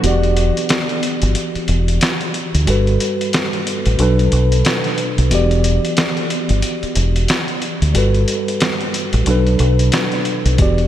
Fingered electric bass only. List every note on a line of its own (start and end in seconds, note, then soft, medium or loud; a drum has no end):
0.04 0.50 E1 loud
1.23 1.34 G1 medium
1.56 muted fingered electric bass stroke soft
1.69 1.98 E1 medium
2.55 2.66 D2 medium
2.68 2.96 G1 loud
3.86 3.98 A1 medium
4.00 4.28 B1 loud
4.33 4.61 B1 medium
5.18 5.30 B1 medium
5.32 5.78 E1 loud
6.50 6.62 G1 medium
6.83 muted fingered electric bass stroke soft
6.96 7.25 E1 loud
7.82 7.93 D2 medium
7.95 8.24 G1 loud
9.14 9.25 A1 medium
9.27 9.56 B1 loud
9.60 9.89 B1 medium
10.46 10.57 B1 medium
10.59 10.87 E1 loud